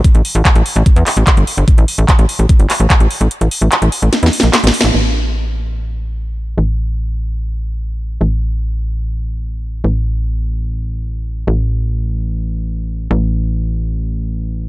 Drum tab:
CC |------------------------------------------------|------------------------------------------------|------------------------------------------------|x-----------------------------------------------|
HH |x--x--o-----x--x--o--x--x--x--o--x--x--x--o--x--|x--x--o--x--x--x--o--x--x--x--o--x--x--x--o--x--|x--x--o-----x--x--o--x--x--x--o-----x--x--o--x--|------------------------------------------------|
CP |------------x-----------------x-----x-----------|------------x-----------------x-----x-----------|------------x-----------------------x-----------|------------------------------------------------|
SD |------------------------------------------------|------------------------------------------------|------------------------o---o---o---o---o---o---|------------------------------------------------|
BD |o-----------o-----------o-----------o-----------|o-----------o-----------o-----------o-----------|------------------------------------------------|------------------------------------------------|

CC |------------------------------------------------|------------------------------------------------|------------------------------------------------|------------------------------------------------|
HH |------------------------------------------------|------------------------------------------------|------------------------------------------------|------------------------------------------------|
CP |------------------------------------------------|------------------------------------------------|------------------------------------------------|------------------------------------------------|
SD |------------------------------------------------|------------------------------------------------|------------------------------------------------|------------------------------------------------|
BD |------------------------------------------------|------------------------------------------------|------------------------------------------------|------------------------------------------------|

CC |------------------------------------------------|
HH |------------------------------------------------|
CP |------------------------------------------------|
SD |------------------------------------------------|
BD |------------------------------------------------|